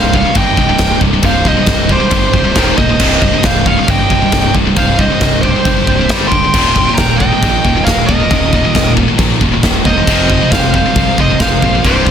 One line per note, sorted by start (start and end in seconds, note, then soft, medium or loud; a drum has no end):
0.00 0.23 C1 medium
0.00 0.11 C2 medium
0.00 0.11 G2 medium
0.00 0.13 C3 medium
0.00 0.14 C5 medium
0.00 0.15 F5 medium
0.13 0.24 C2 medium
0.13 0.24 G2 medium
0.13 0.35 C3 loud
0.13 0.37 F5 loud
0.13 kick medium
0.19 0.37 C#5 medium
0.25 0.34 C2 medium
0.25 0.35 G2 medium
0.35 0.51 G1 medium
0.35 0.55 C2 medium
0.35 0.56 G2 medium
0.35 0.58 C3 loud
0.35 0.98 G5 loud
0.35 kick loud
0.35 china medium
0.39 0.99 D#5 medium
0.57 0.73 C1 medium
0.57 0.68 C2 medium
0.57 0.68 G2 medium
0.57 0.79 C3 loud
0.57 kick medium
0.69 0.77 C2 medium
0.69 0.78 G2 medium
0.78 0.95 C1 medium
0.78 0.99 C2 medium
0.78 0.99 G2 medium
0.78 1.01 C3 medium
0.78 kick loud
0.78 snare loud
0.78 china medium
1.01 1.17 C1 medium
1.01 1.12 C2 medium
1.01 1.12 G2 medium
1.01 1.23 C3 medium
1.01 kick medium
1.13 1.22 C2 medium
1.13 1.22 G2 medium
1.23 1.55 C1 loud
1.23 1.43 C2 medium
1.23 1.43 G2 medium
1.23 1.45 C3 loud
1.23 1.45 F5 medium
1.23 kick loud
1.23 china medium
1.27 1.46 C5 medium
1.45 1.56 C2 medium
1.45 1.55 G2 medium
1.45 1.67 C3 loud
1.45 1.88 C5 medium
1.45 1.92 D#5 medium
1.45 kick medium
1.57 1.66 C2 medium
1.57 1.67 G2 medium
1.66 1.98 C1 medium
1.66 1.87 C2 medium
1.66 1.88 G2 medium
1.66 1.90 C3 medium
1.66 kick loud
1.66 snare loud
1.66 china medium
1.89 1.99 C2 medium
1.89 1.99 G2 medium
1.89 2.12 C3 loud
1.89 2.75 G4 medium
1.89 2.75 C5 medium
1.89 kick medium
2.00 2.09 C2 medium
2.00 2.09 G2 medium
2.10 2.27 G1 medium
2.10 2.31 C2 medium
2.10 2.31 G2 medium
2.10 2.35 C3 medium
2.10 kick loud
2.10 china medium
2.33 2.49 C1 loud
2.33 2.43 C2 medium
2.33 2.43 G2 medium
2.33 2.56 C3 loud
2.33 kick medium
2.44 2.56 C2 medium
2.44 2.56 G2 medium
2.55 2.72 D#1 medium
2.55 2.77 D#2 medium
2.55 2.77 A#2 loud
2.55 2.77 D#3 medium
2.55 kick loud
2.55 snare loud
2.55 china medium
2.78 2.94 C#1 medium
2.78 2.88 D#2 medium
2.78 2.88 A#2 medium
2.78 3.00 D#3 medium
2.78 3.41 C5 medium
2.78 3.46 D#5 loud
2.78 kick medium
2.89 3.00 D#2 medium
2.89 3.00 A#2 medium
2.99 3.32 C1 loud
2.99 3.21 C2 loud
2.99 3.21 G2 medium
2.99 3.22 C3 loud
2.99 kick loud
2.99 crash loud
2.99 china medium
3.22 3.32 C2 medium
3.22 3.32 G2 medium
3.22 3.44 C3 loud
3.22 kick medium
3.33 3.43 C2 medium
3.33 3.44 G2 medium
3.43 3.75 C1 medium
3.43 3.64 C2 medium
3.43 3.65 G2 medium
3.43 3.67 C3 loud
3.43 3.66 C5 medium
3.43 3.66 F5 loud
3.43 kick loud
3.43 snare loud
3.43 china medium
3.66 3.77 C2 medium
3.66 3.76 G2 medium
3.66 3.89 C3 loud
3.66 3.87 C#5 medium
3.66 3.87 F5 loud
3.66 kick medium
3.77 3.87 C2 medium
3.77 3.87 G2 medium
3.88 4.04 G1 medium
3.88 4.08 C2 medium
3.88 4.08 G2 medium
3.88 4.09 C3 loud
3.88 4.51 D#5 medium
3.88 4.52 G5 loud
3.88 kick loud
3.88 china medium
4.10 4.26 C1 medium
4.10 4.21 C2 medium
4.10 4.21 G2 medium
4.10 4.32 C3 loud
4.10 kick medium
4.22 4.32 C2 medium
4.22 4.32 G2 medium
4.32 4.48 C1 medium
4.32 4.53 C2 medium
4.32 4.53 G2 medium
4.32 4.54 C3 loud
4.32 kick loud
4.32 snare loud
4.32 china medium
4.55 4.71 C1 loud
4.55 4.66 C2 medium
4.55 4.66 G2 medium
4.55 4.78 C3 medium
4.55 kick medium
4.67 4.78 C2 medium
4.67 4.78 G2 medium
4.76 5.08 C1 loud
4.76 4.98 C2 medium
4.76 4.98 G2 medium
4.76 5.00 C3 loud
4.76 4.98 C5 medium
4.76 5.00 F5 loud
4.76 kick loud
4.76 china medium
4.99 5.11 C2 medium
4.99 5.11 G2 medium
4.99 5.22 C3 loud
4.99 5.40 C5 medium
4.99 5.41 D#5 medium
4.99 kick medium
5.12 5.21 C2 medium
5.12 5.22 G2 medium
5.21 5.53 C1 loud
5.21 5.42 C2 medium
5.21 5.42 G2 medium
5.21 5.44 C3 medium
5.21 kick loud
5.21 snare loud
5.21 china medium
5.41 5.55 C2 medium
5.41 5.55 G2 medium
5.41 6.27 G4 medium
5.41 6.34 C5 loud
5.41 kick medium
5.46 5.65 C3 loud
5.56 5.66 C2 medium
5.56 5.65 G2 medium
5.65 5.81 G1 medium
5.65 5.86 C2 medium
5.65 5.86 G2 medium
5.65 5.87 C3 medium
5.65 kick loud
5.65 china medium
5.87 6.10 C1 medium
5.87 5.99 C2 medium
5.87 5.99 G2 medium
5.87 6.09 C3 loud
5.87 kick medium
6.01 6.11 C2 medium
6.01 6.10 G2 medium
6.09 6.25 G1 medium
6.09 6.31 G2 medium
6.09 6.31 D3 medium
6.09 6.32 G3 loud
6.09 kick loud
6.09 snare loud
6.09 china medium
6.28 6.47 D1 medium
6.28 6.93 G5 medium
6.28 6.94 C6 loud
6.28 kick medium
6.33 6.44 G2 medium
6.33 6.43 D3 medium
6.33 6.55 G3 medium
6.44 6.54 G2 medium
6.44 6.54 D3 medium
6.54 6.85 D#1 loud
6.54 6.75 D#2 medium
6.54 6.75 A#2 medium
6.54 6.75 D#3 loud
6.54 kick loud
6.54 china medium
6.54 crash loud
6.76 6.88 D#2 medium
6.76 6.88 A#2 medium
6.76 6.99 D#3 medium
6.76 kick medium
6.89 6.98 D#2 medium
6.89 6.98 A#2 medium
6.95 7.30 D#1 medium
6.95 7.17 G5 medium
6.95 7.19 A#5 loud
6.95 kick loud
6.95 snare loud
6.95 china medium
6.99 7.19 D#2 medium
6.99 7.19 A#2 medium
6.99 7.20 D#3 medium
7.16 7.81 D#5 medium
7.16 7.85 G5 loud
7.20 7.32 D#2 medium
7.20 7.31 A#2 medium
7.20 7.42 D#3 loud
7.20 kick medium
7.32 7.42 D#2 medium
7.32 7.42 A#2 medium
7.43 7.58 A#1 medium
7.43 7.63 D#2 medium
7.43 7.63 A#2 medium
7.43 7.65 D#3 loud
7.43 kick loud
7.43 china medium
7.65 7.80 D#1 medium
7.65 7.76 D#2 medium
7.65 7.76 A#2 medium
7.65 7.87 D#3 loud
7.65 kick medium
7.77 7.86 D#2 medium
7.77 7.86 A#2 medium
7.84 8.02 D#1 medium
7.84 8.07 D#2 medium
7.84 8.07 A#2 medium
7.84 8.08 D#3 medium
7.84 8.06 A#4 medium
7.84 8.09 F5 medium
7.84 kick loud
7.84 snare loud
7.84 china medium
8.06 8.24 D#1 medium
8.06 8.19 D#2 medium
8.06 8.19 A#2 medium
8.06 8.29 D#3 medium
8.06 8.92 A#4 medium
8.06 8.92 D#5 medium
8.06 kick medium
8.20 8.30 D#2 medium
8.20 8.31 A#2 medium
8.31 8.62 D#1 loud
8.31 8.51 D#2 medium
8.31 8.51 A#2 medium
8.31 8.52 D#3 loud
8.31 kick loud
8.31 china medium
8.53 8.64 D#2 medium
8.53 8.63 A#2 medium
8.53 8.74 D#3 loud
8.53 kick medium
8.64 8.75 D#2 medium
8.64 8.75 A#2 medium
8.75 9.07 D#1 medium
8.75 8.95 D#2 medium
8.75 8.95 A#2 medium
8.75 8.96 D#3 medium
8.75 kick loud
8.75 snare loud
8.75 china medium
8.97 9.07 D#2 medium
8.97 9.07 A#2 medium
8.97 9.17 D#3 loud
8.97 kick medium
9.08 9.17 D#2 medium
9.08 9.17 A#2 medium
9.18 9.34 A#1 loud
9.18 9.38 D#2 medium
9.18 9.39 A#2 loud
9.18 9.40 D#3 loud
9.18 kick loud
9.18 china medium
9.41 9.57 D#1 medium
9.41 9.51 D#2 medium
9.41 9.51 A#2 medium
9.41 9.64 D#3 loud
9.41 kick medium
9.52 9.63 D#2 medium
9.52 9.63 A#2 medium
9.63 9.79 D#1 medium
9.63 9.84 D#2 medium
9.63 9.84 A#2 medium
9.63 9.85 D#3 medium
9.63 kick loud
9.63 snare loud
9.63 china medium
9.85 10.01 E1 medium
9.85 9.97 D#2 medium
9.85 9.96 A#2 medium
9.85 10.07 D#3 loud
9.85 10.49 C5 medium
9.85 10.51 D#5 loud
9.85 kick medium
9.98 10.08 D#2 medium
9.98 10.08 A#2 medium
10.07 10.39 F1 loud
10.07 10.29 F2 medium
10.07 10.28 C3 loud
10.07 10.29 F3 loud
10.07 kick loud
10.07 china medium
10.07 crash loud
10.30 10.41 F2 medium
10.30 10.40 C3 medium
10.30 10.51 F3 loud
10.30 kick medium
10.41 10.51 F2 medium
10.41 10.51 C3 medium
10.51 10.83 F1 loud
10.51 10.72 F2 medium
10.51 10.72 C3 loud
10.51 10.74 F3 loud
10.51 10.73 C5 medium
10.51 10.73 F5 loud
10.51 kick loud
10.51 snare loud
10.51 china medium
10.74 10.85 F2 medium
10.74 10.84 C3 medium
10.74 10.95 F3 loud
10.74 11.15 C5 medium
10.74 11.20 F5 loud
10.74 kick medium
10.86 10.96 F2 medium
10.86 10.96 C3 medium
10.96 11.11 C2 loud
10.96 11.16 F2 medium
10.96 11.16 C3 medium
10.96 11.18 F3 loud
10.96 kick loud
10.96 china medium
11.18 11.34 F1 medium
11.18 11.29 F2 medium
11.18 11.29 C3 medium
11.18 11.40 F3 loud
11.18 11.39 C5 medium
11.18 11.40 D#5 medium
11.18 kick medium
11.30 11.40 F2 medium
11.30 11.40 C3 medium
11.40 11.56 F1 medium
11.40 11.61 F2 medium
11.40 11.61 C3 medium
11.40 11.64 F3 loud
11.40 11.81 C5 medium
11.40 11.86 F5 loud
11.40 kick loud
11.40 snare loud
11.40 china medium
11.62 11.78 A#1 medium
11.62 11.74 F2 medium
11.62 11.73 C3 medium
11.62 11.84 F3 loud
11.62 kick medium
11.75 11.85 F2 medium
11.75 11.85 C3 medium
11.84 12.11 C1 loud
11.84 12.06 C2 medium
11.84 12.06 G2 medium
11.84 12.06 C3 loud
11.84 12.11 G4 medium
11.84 12.11 C5 medium
11.84 kick loud
11.84 china medium
12.07 12.11 C2 medium
12.07 12.11 C2 loud
12.07 12.11 G2 medium
12.07 kick medium